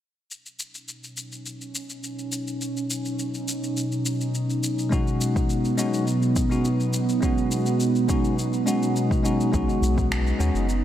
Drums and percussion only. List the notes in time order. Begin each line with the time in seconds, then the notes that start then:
0.31 shaker
0.46 shaker
0.60 shaker
0.75 shaker
0.89 shaker
1.04 shaker
1.17 shaker
1.32 shaker
1.46 shaker
1.61 shaker
1.75 shaker
1.90 shaker
2.04 shaker
2.19 shaker
2.32 shaker
2.48 shaker
2.61 shaker
2.77 shaker
2.90 shaker
3.05 shaker
3.19 shaker
3.34 shaker
3.48 shaker
3.64 shaker
3.77 shaker
3.92 shaker
4.06 shaker
4.21 shaker
4.35 shaker
4.50 shaker
4.64 shaker
4.79 shaker
4.92 kick, shaker
5.08 shaker
5.21 shaker
5.36 kick, shaker
5.50 shaker
5.65 shaker
5.78 shaker
5.94 shaker
6.07 shaker
6.22 shaker
6.36 kick, shaker
6.52 shaker
6.65 shaker
6.80 shaker
6.93 shaker
7.09 shaker
7.23 kick, shaker
7.38 shaker
7.51 shaker
7.66 shaker
7.80 shaker
7.95 shaker
8.09 kick, shaker
8.25 shaker
8.39 shaker
8.53 shaker
8.68 shaker
8.83 shaker
8.96 shaker
9.11 kick, shaker
9.25 shaker
9.41 shaker
9.54 kick, shaker
9.69 shaker
9.83 shaker
9.98 kick, shaker
10.12 finger snap, shaker
10.27 shaker
10.40 shaker
10.55 shaker
10.69 shaker